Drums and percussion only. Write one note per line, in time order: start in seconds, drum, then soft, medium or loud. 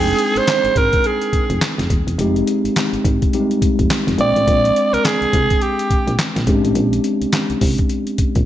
0.07 closed hi-hat soft
0.19 closed hi-hat medium
0.36 closed hi-hat medium
0.47 snare loud
0.47 clap medium
0.47 closed hi-hat medium
0.65 closed hi-hat soft
0.76 kick medium
0.76 closed hi-hat medium
0.93 kick medium
0.93 closed hi-hat medium
1.04 closed hi-hat medium
1.22 closed hi-hat medium
1.33 kick medium
1.33 closed hi-hat medium
1.50 closed hi-hat soft
1.61 snare loud
1.61 clap medium
1.61 closed hi-hat medium
1.79 snare medium
1.79 closed hi-hat medium
1.90 kick medium
1.90 closed hi-hat medium
2.08 closed hi-hat medium
2.19 closed hi-hat medium
2.36 closed hi-hat soft
2.47 closed hi-hat medium
2.65 closed hi-hat medium
2.76 snare loud
2.76 clap medium
2.76 closed hi-hat medium
2.94 closed hi-hat soft
3.05 kick medium
3.05 closed hi-hat medium
3.22 kick loud
3.22 closed hi-hat medium
3.33 closed hi-hat medium
3.51 closed hi-hat medium
3.62 kick medium
3.62 closed hi-hat medium
3.79 kick medium
3.79 closed hi-hat soft
3.90 snare loud
3.90 clap medium
3.90 closed hi-hat medium
4.08 snare medium
4.08 closed hi-hat medium
4.18 closed hi-hat medium
4.36 closed hi-hat medium
4.47 kick loud
4.47 closed hi-hat medium
4.65 closed hi-hat medium
4.76 closed hi-hat medium
4.94 closed hi-hat medium
5.05 snare loud
5.05 clap medium
5.05 closed hi-hat medium
5.22 closed hi-hat soft
5.33 kick medium
5.33 closed hi-hat medium
5.50 kick loud
5.50 closed hi-hat medium
5.62 closed hi-hat medium
5.79 closed hi-hat medium
5.90 kick medium
5.90 closed hi-hat medium
6.08 closed hi-hat soft
6.19 snare loud
6.19 clap loud
6.19 closed hi-hat medium
6.36 snare medium
6.36 closed hi-hat medium
6.47 kick loud
6.47 closed hi-hat medium
6.65 closed hi-hat medium
6.75 closed hi-hat medium
6.93 closed hi-hat soft
7.04 closed hi-hat medium
7.22 closed hi-hat medium
7.32 snare loud
7.32 clap medium
7.32 closed hi-hat medium
7.50 closed hi-hat soft
7.61 kick medium
7.61 open hi-hat medium
7.78 kick loud
7.78 closed hi-hat medium
7.89 closed hi-hat medium
8.07 closed hi-hat medium
8.18 kick medium
8.18 closed hi-hat medium
8.35 kick medium
8.35 closed hi-hat soft